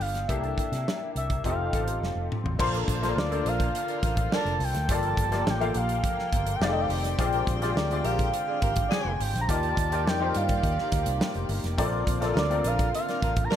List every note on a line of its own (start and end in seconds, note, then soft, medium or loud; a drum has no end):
0.00 0.24 G1 medium
0.00 0.11 B3 medium
0.00 0.12 D4 medium
0.00 0.12 F4 medium
0.00 0.12 G4 medium
0.00 0.12 A4 medium
0.00 0.28 F5 loud
0.00 open hi-hat medium
0.15 snare soft
0.15 closed hi-hat medium
0.28 0.53 C2 medium
0.28 1.21 A#3 medium
0.28 1.21 D4 medium
0.28 1.21 E4 medium
0.28 1.21 G4 medium
0.28 1.22 A4 medium
0.28 1.11 E5 medium
0.28 kick medium
0.28 closed hi-hat medium
0.44 closed hi-hat soft
0.58 kick medium
0.58 closed hi-hat medium
0.72 0.84 C3 medium
0.72 snare soft
0.72 closed hi-hat soft
0.88 snare medium
1.15 1.40 C2 medium
1.15 1.43 E5 medium
1.15 closed hi-hat medium
1.30 kick medium
1.30 closed hi-hat medium
1.44 1.68 F1 loud
1.44 1.67 C4 medium
1.44 1.67 D#4 medium
1.44 1.67 F4 medium
1.44 1.68 G4 medium
1.44 1.68 A4 medium
1.44 2.28 F5 loud
1.44 kick medium
1.44 closed hi-hat medium
1.73 1.97 A1 medium
1.73 2.42 C4 medium
1.73 2.42 D#4 medium
1.73 2.42 F4 medium
1.73 2.42 G4 medium
1.73 2.42 A4 medium
1.73 kick medium
1.73 closed hi-hat medium
1.88 closed hi-hat medium
2.01 2.14 F1 medium
2.01 snare soft
2.15 2.28 F1 medium
2.32 mid tom medium
2.44 2.56 A1 medium
2.44 floor tom medium
2.59 2.84 A#1 loud
2.59 4.87 D3 medium
2.59 2.94 A#3 medium
2.59 4.88 A#3 medium
2.59 2.93 D4 medium
2.59 2.94 F4 medium
2.59 4.88 F4 medium
2.59 2.94 A4 medium
2.59 6.58 A4 medium
2.59 2.94 C5 medium
2.59 kick loud
2.59 crash loud
2.73 2.85 D4 medium
2.73 2.85 F4 medium
2.73 2.85 A#4 medium
2.73 closed hi-hat soft
2.87 3.12 A#1 medium
2.87 kick medium
2.87 closed hi-hat medium
3.02 3.25 A#3 medium
3.02 3.25 D4 medium
3.02 3.14 D4 medium
3.02 3.25 F4 medium
3.02 3.14 F4 medium
3.02 3.14 A4 medium
3.02 3.26 A4 medium
3.02 3.26 C5 medium
3.02 snare soft
3.02 closed hi-hat soft
3.16 3.41 D2 medium
3.16 3.29 D4 medium
3.16 3.28 F4 medium
3.16 3.29 A#4 medium
3.16 3.49 D5 medium
3.16 snare loud
3.31 4.23 A#3 medium
3.31 4.23 D4 medium
3.31 4.23 F4 medium
3.31 4.23 A4 medium
3.31 4.23 C5 medium
3.31 closed hi-hat soft
3.45 3.70 A#1 medium
3.45 3.68 D4 medium
3.45 3.69 F4 loud
3.45 3.69 A#4 loud
3.45 3.75 F5 loud
3.45 closed hi-hat medium
3.60 kick medium
3.60 closed hi-hat medium
3.75 4.35 F5 loud
3.75 closed hi-hat medium
3.88 4.00 D4 medium
3.88 4.00 A#4 medium
3.88 4.00 D5 medium
3.88 closed hi-hat soft
4.03 4.27 A1 medium
4.03 4.15 D4 medium
4.03 4.15 F4 medium
4.03 4.15 A#4 medium
4.03 kick loud
4.03 closed hi-hat medium
4.17 kick medium
4.17 closed hi-hat medium
4.32 4.55 D4 loud
4.32 4.55 A#4 loud
4.32 4.55 D5 loud
4.32 4.65 A5 loud
4.32 snare loud
4.45 4.58 F1 medium
4.45 closed hi-hat soft
4.60 4.72 C2 medium
4.60 open hi-hat medium
4.64 4.94 G5 loud
4.74 4.90 D2 medium
4.74 snare soft
4.74 closed hi-hat medium
4.89 5.13 G1 loud
4.89 6.60 F3 medium
4.89 5.24 A#3 medium
4.89 6.60 A#3 medium
4.89 5.24 F4 medium
4.89 5.24 G4 medium
4.89 5.24 A4 medium
4.89 5.24 D5 medium
4.89 9.45 G5 medium
4.89 5.51 A5 loud
4.89 kick loud
4.89 closed hi-hat loud
5.03 closed hi-hat soft
5.17 5.42 G1 medium
5.17 kick medium
5.17 closed hi-hat medium
5.32 5.55 A#3 medium
5.32 5.55 F4 medium
5.32 5.55 G4 medium
5.32 5.55 A4 medium
5.32 5.55 D5 medium
5.32 snare soft
5.32 closed hi-hat soft
5.47 5.71 A1 medium
5.47 5.79 G5 loud
5.47 snare loud
5.60 6.53 A#3 medium
5.60 6.53 F4 medium
5.60 6.53 G4 medium
5.60 6.53 A4 medium
5.60 6.53 F5 medium
5.60 closed hi-hat soft
5.74 6.00 A#1 medium
5.74 6.57 F5 medium
5.74 closed hi-hat medium
5.89 closed hi-hat medium
6.04 kick medium
6.04 closed hi-hat medium
6.19 snare soft
6.32 6.57 G1 medium
6.32 kick loud
6.32 closed hi-hat medium
6.47 closed hi-hat medium
6.55 6.66 G5 medium
6.60 6.85 F1 medium
6.60 7.19 D#3 medium
6.60 7.19 A3 medium
6.60 7.08 C4 medium
6.60 7.08 D#4 medium
6.60 7.08 G4 medium
6.60 6.68 G#4 medium
6.60 7.08 D5 loud
6.60 7.19 D5 medium
6.60 6.74 F5 medium
6.60 snare medium
6.69 7.11 A4 medium
6.69 6.83 D#5 medium
6.81 6.90 F5 medium
6.89 7.14 F1 medium
6.89 open hi-hat medium
7.04 snare soft
7.04 closed hi-hat medium
7.18 7.43 A#1 loud
7.18 9.47 D3 medium
7.18 9.47 G#3 medium
7.18 7.53 C4 loud
7.18 9.47 C4 medium
7.18 7.53 F4 medium
7.18 7.54 G4 medium
7.18 7.54 G#4 medium
7.18 7.54 D5 loud
7.18 kick loud
7.18 closed hi-hat medium
7.33 7.45 F4 medium
7.33 7.45 G4 medium
7.33 7.45 A#4 medium
7.33 closed hi-hat soft
7.47 7.72 A#1 loud
7.47 kick loud
7.47 closed hi-hat medium
7.61 7.85 C4 medium
7.61 7.74 D4 medium
7.61 7.85 F4 medium
7.61 7.74 F4 medium
7.61 7.85 G4 medium
7.61 7.74 G#4 medium
7.61 7.85 G#4 medium
7.61 7.85 D5 medium
7.61 snare soft
7.61 closed hi-hat medium
7.76 8.00 D2 medium
7.76 7.87 F4 medium
7.76 7.88 G4 medium
7.76 7.88 A#4 medium
7.76 8.06 D5 medium
7.76 snare loud
7.91 8.83 C4 medium
7.91 8.83 F4 medium
7.91 8.83 G4 medium
7.91 8.83 G#4 medium
7.91 8.84 D5 medium
7.91 closed hi-hat soft
8.03 8.29 A#1 medium
8.03 8.27 F4 medium
8.03 8.27 G4 loud
8.03 8.27 A#4 loud
8.03 8.33 F5 medium
8.03 closed hi-hat medium
8.19 kick medium
8.19 closed hi-hat medium
8.33 8.94 F5 loud
8.33 closed hi-hat medium
8.47 8.59 D4 medium
8.47 8.59 G#4 medium
8.47 8.59 D5 medium
8.62 8.87 G#1 medium
8.62 8.74 F4 medium
8.62 8.74 G4 medium
8.62 8.74 A#4 medium
8.62 kick loud
8.62 closed hi-hat medium
8.76 kick loud
8.76 closed hi-hat medium
8.89 9.13 D4 loud
8.89 9.13 G#4 loud
8.89 9.13 D5 loud
8.89 9.23 G#5 loud
8.89 snare loud
9.05 9.17 F1 loud
9.20 9.32 G#1 medium
9.20 9.41 G5 loud
9.20 open hi-hat medium
9.34 9.47 A#1 medium
9.34 snare soft
9.34 closed hi-hat medium
9.41 9.49 A#5 medium
9.48 9.73 D#2 loud
9.48 11.77 D#3 medium
9.48 13.56 A#3 medium
9.48 9.83 D#4 medium
9.48 9.84 F4 medium
9.48 9.83 G4 medium
9.48 11.77 G4 medium
9.48 9.84 A#4 medium
9.48 11.77 D5 medium
9.48 9.84 D5 medium
9.48 10.09 A5 loud
9.48 kick loud
9.48 closed hi-hat loud
9.63 closed hi-hat soft
9.77 10.06 D#2 medium
9.77 kick loud
9.77 closed hi-hat medium
9.92 10.15 D#4 medium
9.92 10.15 F4 medium
9.92 10.15 G4 medium
9.92 10.15 A#4 medium
9.92 10.15 D5 medium
9.92 closed hi-hat medium
10.06 10.31 F2 medium
10.06 10.38 G5 loud
10.06 snare loud
10.20 11.12 D#4 medium
10.20 11.12 F4 medium
10.20 11.13 G4 medium
10.20 11.13 A#4 medium
10.20 11.13 C5 medium
10.35 10.60 G2 medium
10.35 11.51 F5 medium
10.35 closed hi-hat medium
10.49 kick medium
10.49 closed hi-hat medium
10.63 10.76 D#2 medium
10.63 kick medium
10.63 closed hi-hat medium
10.78 snare soft
10.92 11.05 D2 medium
10.92 kick medium
10.92 closed hi-hat medium
11.06 11.19 C2 medium
11.06 closed hi-hat medium
11.21 snare loud
11.34 11.48 F1 medium
11.34 closed hi-hat soft
11.49 11.62 G1 loud
11.49 open hi-hat medium
11.64 11.76 F1 medium
11.64 snare soft
11.64 closed hi-hat medium
11.78 12.03 A#1 loud
11.78 13.56 D3 medium
11.78 12.13 C4 medium
11.78 12.13 F4 medium
11.78 13.56 F4 medium
11.78 12.13 A4 medium
11.78 12.13 A#4 medium
11.78 12.13 D5 loud
11.78 kick loud
11.78 closed hi-hat medium
11.92 12.04 D4 medium
11.92 12.04 F4 medium
11.92 12.04 A#4 medium
12.07 12.32 A#1 medium
12.07 kick loud
12.07 closed hi-hat medium
12.20 12.44 C4 medium
12.20 12.32 D4 medium
12.20 12.32 F4 medium
12.20 12.44 F4 medium
12.20 12.33 A4 medium
12.20 12.45 A4 medium
12.20 12.45 A#4 medium
12.20 12.45 D5 medium
12.20 snare soft
12.20 closed hi-hat soft
12.34 12.60 D2 medium
12.34 12.47 D4 medium
12.34 12.46 F4 medium
12.34 12.47 A#4 medium
12.34 snare loud
12.38 12.68 D5 loud
12.50 13.42 C4 medium
12.50 13.43 F4 medium
12.50 13.43 A4 medium
12.50 13.43 A#4 medium
12.50 13.43 D5 medium
12.50 closed hi-hat soft
12.64 12.89 A#1 medium
12.64 12.88 D4 loud
12.64 12.88 F4 loud
12.64 12.88 A#4 loud
12.64 12.94 F5 loud
12.64 closed hi-hat medium
12.79 kick medium
12.79 closed hi-hat soft
12.95 13.46 F5 medium
12.95 closed hi-hat medium
13.08 13.19 D4 medium
13.08 13.20 A#4 medium
13.08 13.19 D5 medium
13.08 snare soft
13.08 closed hi-hat soft
13.22 13.47 A1 medium
13.22 13.34 D4 medium
13.22 13.34 F4 medium
13.22 13.34 A#4 medium
13.22 kick medium
13.22 closed hi-hat medium
13.36 kick loud
13.36 closed hi-hat medium
13.44 13.54 A#5 medium
13.50 13.56 D4 loud
13.50 13.56 A#4 loud
13.50 13.56 D5 loud
13.50 13.56 A5 loud
13.50 snare loud